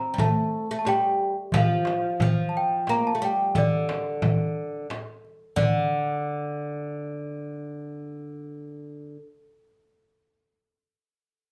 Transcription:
0.00 0.14 C4 medium
0.00 0.20 A#5 medium
0.14 0.19 G3 medium
0.18 0.66 A3 medium
0.18 0.75 A5 medium
0.18 darbuka dum medium
0.18 frame drum medium
0.71 0.86 A3 medium
0.79 0.86 A5 medium
0.85 1.33 G3 medium
0.85 1.34 G5 medium
0.85 darbuka tek medium
0.85 frame drum medium
1.19 darbuka ka soft
1.52 2.21 F3 medium
1.52 darbuka dum medium
1.52 frame drum medium
1.57 2.51 F5 medium
1.85 darbuka tek medium
1.85 frame drum medium
2.20 2.90 F3 medium
2.20 darbuka dum medium
2.20 frame drum medium
2.49 2.55 A5 medium
2.57 2.90 G5 medium
2.87 3.14 A#3 medium
2.87 3.06 A#5 medium
2.87 darbuka tek medium
2.87 frame drum medium
3.07 3.23 A5 medium
3.15 3.21 A3 medium
3.22 3.53 G3 medium
3.22 3.57 G5 medium
3.55 4.86 D3 medium
3.55 4.87 D5 medium
3.55 darbuka dum medium
3.55 frame drum medium
3.89 darbuka tek medium
3.89 frame drum medium
4.22 frame drum medium
4.22 darbuka dum medium
4.90 darbuka tek medium
4.90 frame drum medium
5.25 darbuka ka soft
5.56 9.16 D3 medium
5.56 9.16 D5 medium
5.56 darbuka dum medium
5.56 frame drum medium

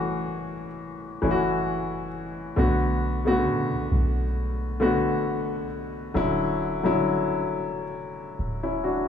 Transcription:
0.00 1.19 F#1 loud
0.00 1.22 E3 medium
0.00 1.23 A3 medium
0.00 1.24 C#4 medium
0.00 1.31 F#4 loud
1.22 2.53 F#1 loud
1.22 2.07 E3 medium
1.22 2.07 A3 medium
1.22 2.08 C#4 medium
1.22 1.31 E4 medium
1.31 2.12 F#4 medium
2.56 3.48 B1 loud
2.56 2.99 D3 medium
2.56 2.99 A3 medium
2.56 3.00 B3 medium
2.56 3.00 F#4 medium
3.25 3.31 C#3 medium
3.25 4.23 A3 medium
3.25 4.24 B3 medium
3.25 4.24 F#4 medium
3.31 4.26 D3 medium
3.47 3.73 B2 loud
3.71 3.91 B1 loud
3.92 5.07 B1 loud
4.80 5.65 D3 medium
4.80 5.65 A3 medium
4.80 5.66 B3 medium
4.80 5.66 F#4 medium
5.05 5.62 A1 medium
5.60 6.13 B1 loud
6.14 8.35 D1 loud
6.14 6.57 D3 medium
6.14 6.57 F#3 medium
6.14 6.58 C#4 medium
6.14 6.58 E4 medium
6.83 7.81 D3 medium
6.83 7.82 F#3 medium
6.83 7.82 C#4 medium
6.83 7.83 E4 medium
8.39 9.08 D1 loud
8.63 8.83 C#4 medium
8.63 8.83 E4 medium
8.84 9.07 D4 medium
8.84 9.07 F#4 medium

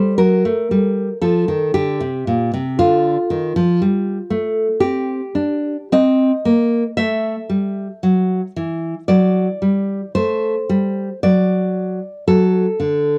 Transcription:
0.00 0.17 G3 medium
0.00 0.16 C5 loud
0.18 0.43 F#3 medium
0.18 1.18 A#4 loud
0.45 0.69 A3 medium
0.71 1.08 G3 medium
1.22 1.47 F3 medium
1.22 1.72 A4 medium
1.48 1.73 D#3 medium
1.74 1.99 D3 medium
1.74 2.75 G4 loud
2.00 2.25 C3 medium
2.27 2.52 A#2 medium
2.54 2.78 C3 medium
2.79 3.16 D3 medium
2.79 4.77 F4 loud
3.30 3.55 D#3 medium
3.56 3.80 F3 medium
3.82 4.17 G3 medium
4.30 4.67 A3 medium
4.80 5.20 C4 medium
4.80 5.88 G4 loud
5.35 5.76 D4 medium
5.92 6.31 C4 medium
5.92 6.94 D#5 loud
6.45 6.83 A#3 medium
6.97 7.35 A3 medium
6.97 9.02 E5 loud
7.50 7.87 G3 medium
8.03 8.40 F#3 medium
8.56 8.94 E3 medium
9.08 9.47 F#3 medium
9.08 10.11 D5 loud
9.62 10.00 G3 medium
10.15 10.54 A3 medium
10.15 11.19 C5 loud
10.69 11.08 G3 medium
11.23 11.99 F#3 medium
11.23 12.24 D5 loud
12.28 12.65 F#3 medium
12.28 13.18 A4 loud
12.80 13.18 D3 medium

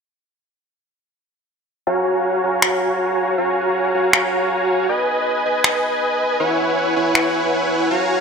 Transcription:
1.87 2.41 F#4 medium
1.87 2.41 C#5 medium
1.87 2.41 F5 medium
1.87 2.41 G#5 medium
1.87 2.41 A#5 medium
2.44 3.36 F#4 medium
2.44 3.36 C#5 medium
2.44 3.36 F5 medium
2.44 3.36 G#5 medium
2.44 3.36 A#5 medium
2.62 finger snap medium
3.38 3.92 F#4 medium
3.38 3.92 C#5 medium
3.38 3.92 F5 medium
3.38 3.92 G#5 medium
3.38 3.92 A#5 medium
3.95 4.87 F#4 medium
3.95 4.87 C#5 medium
3.95 4.87 F5 medium
3.95 4.87 G#5 medium
3.95 4.87 A#5 medium
4.13 finger snap medium
4.89 5.43 B4 medium
4.89 5.43 D#5 medium
4.89 5.43 G#5 medium
5.45 6.38 B4 medium
5.45 6.38 D#5 medium
5.45 6.38 G#5 medium
5.64 finger snap medium
6.40 6.94 E4 medium
6.40 6.94 B4 medium
6.40 6.94 C#5 medium
6.40 6.94 F#5 medium
6.40 6.94 G#5 medium
6.96 7.89 E4 medium
6.96 7.89 B4 medium
6.96 7.89 C#5 medium
6.96 7.89 F#5 medium
6.96 7.89 G#5 medium
7.15 finger snap medium
7.91 8.21 F#4 medium
7.91 8.21 C#5 medium
7.91 8.21 F5 medium
7.91 8.21 G#5 medium
7.91 8.21 A#5 medium

